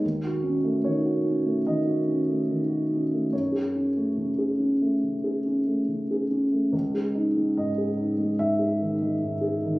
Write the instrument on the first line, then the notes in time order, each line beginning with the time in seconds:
grand piano
0.04 D#2
0.25 F#4
0.43 C#4
0.64 A3
0.84 D#3 C#5
1.05 F#4
1.25 C#4
1.46 A3
1.67 D#3 D#5
1.87 F#4
2.07 C#4
2.28 A3
2.49 D#3
2.69 F#4
2.90 C#4
3.12 A3
3.32 F#2 C#5
3.52 G#4
3.75 C#4
3.96 A3
4.17 C#3
4.38 G#4
4.59 C#4
4.82 A3
5.03 C#3
5.24 G#4
5.46 C#4
5.67 A3
5.88 C#3
6.11 G#4
6.31 C#4
6.52 A3
6.73 C#2
6.94 G#4
7.15 D#4
7.36 G#3
7.57 G#2 D#5
7.78 G#4
7.97 D#4
8.18 G#3
8.39 G#2 E5
8.59 G#4
8.81 D#3
9.02 G#3
9.22 G#2
9.41 G#4
9.64 D#3